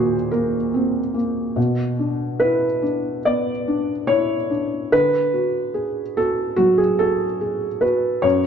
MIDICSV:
0, 0, Header, 1, 2, 480
1, 0, Start_track
1, 0, Tempo, 835655
1, 898, Time_signature, 4, 2, 24, 8
1, 4863, End_track
2, 0, Start_track
2, 0, Title_t, "Felt piano"
2, 0, Program_c, 0, 0
2, 0, Control_c, 0, 64, 127
2, 0, Note_on_c, 0, 39, 48
2, 0, Note_on_c, 0, 46, 39
2, 0, Note_on_c, 0, 58, 39
2, 0, Note_on_c, 0, 60, 34
2, 0, Note_on_c, 0, 66, 63
2, 0, Note_on_c, 0, 68, 63
2, 0, Note_on_c, 0, 70, 56
2, 0, Note_on_c, 0, 72, 76
2, 77, Note_off_c, 0, 58, 0
2, 176, Note_off_c, 0, 66, 0
2, 180, Note_off_c, 0, 70, 0
2, 180, Note_on_c, 0, 70, 60
2, 188, Note_on_c, 0, 58, 35
2, 321, Note_off_c, 0, 46, 0
2, 425, Note_off_c, 0, 60, 0
2, 425, Note_on_c, 0, 60, 35
2, 568, Note_off_c, 0, 58, 0
2, 656, Note_on_c, 0, 58, 37
2, 662, Note_off_c, 0, 70, 0
2, 663, Note_off_c, 0, 60, 0
2, 896, Note_on_c, 0, 47, 55
2, 898, Note_off_c, 0, 58, 0
2, 909, Control_c, 0, 64, 0
2, 911, Note_off_c, 0, 68, 0
2, 912, Note_off_c, 0, 39, 0
2, 913, Note_off_c, 0, 72, 0
2, 996, Control_c, 0, 64, 127
2, 1143, Note_on_c, 0, 62, 35
2, 1376, Note_on_c, 0, 71, 75
2, 1382, Note_on_c, 0, 64, 38
2, 1524, Note_off_c, 0, 62, 0
2, 1620, Note_off_c, 0, 64, 0
2, 1620, Note_on_c, 0, 62, 41
2, 1834, Note_off_c, 0, 47, 0
2, 1858, Note_off_c, 0, 71, 0
2, 1869, Note_on_c, 0, 59, 43
2, 1869, Note_on_c, 0, 74, 74
2, 2004, Note_off_c, 0, 62, 0
2, 2112, Note_on_c, 0, 62, 42
2, 2248, Note_off_c, 0, 59, 0
2, 2339, Note_on_c, 0, 73, 80
2, 2345, Note_off_c, 0, 74, 0
2, 2347, Note_on_c, 0, 64, 39
2, 2492, Note_off_c, 0, 62, 0
2, 2585, Note_on_c, 0, 62, 36
2, 2586, Note_off_c, 0, 64, 0
2, 2823, Note_off_c, 0, 73, 0
2, 2824, Note_off_c, 0, 62, 0
2, 2828, Note_on_c, 0, 71, 93
2, 2829, Note_on_c, 0, 50, 58
2, 2834, Control_c, 0, 64, 0
2, 2936, Control_c, 0, 64, 127
2, 3065, Note_on_c, 0, 66, 38
2, 3298, Note_on_c, 0, 68, 42
2, 3445, Note_off_c, 0, 66, 0
2, 3539, Note_off_c, 0, 68, 0
2, 3542, Note_off_c, 0, 71, 0
2, 3544, Note_on_c, 0, 69, 75
2, 3546, Note_on_c, 0, 66, 44
2, 3762, Note_off_c, 0, 50, 0
2, 3762, Note_off_c, 0, 66, 0
2, 3770, Note_on_c, 0, 66, 82
2, 3781, Note_on_c, 0, 54, 41
2, 3784, Note_off_c, 0, 69, 0
2, 3893, Note_on_c, 0, 68, 63
2, 3897, Note_off_c, 0, 66, 0
2, 4014, Note_on_c, 0, 69, 76
2, 4017, Note_on_c, 0, 66, 47
2, 4019, Note_off_c, 0, 68, 0
2, 4167, Note_off_c, 0, 54, 0
2, 4256, Note_on_c, 0, 68, 36
2, 4400, Note_off_c, 0, 66, 0
2, 4486, Note_on_c, 0, 71, 64
2, 4493, Note_off_c, 0, 69, 0
2, 4493, Note_on_c, 0, 66, 44
2, 4495, Note_off_c, 0, 68, 0
2, 4722, Note_on_c, 0, 73, 80
2, 4726, Note_on_c, 0, 42, 60
2, 4728, Note_off_c, 0, 71, 0
2, 4732, Note_off_c, 0, 66, 0
2, 4745, Control_c, 0, 64, 0
2, 4837, Control_c, 0, 64, 127
2, 4863, Note_off_c, 0, 42, 0
2, 4863, Note_off_c, 0, 73, 0
2, 4863, End_track
0, 0, End_of_file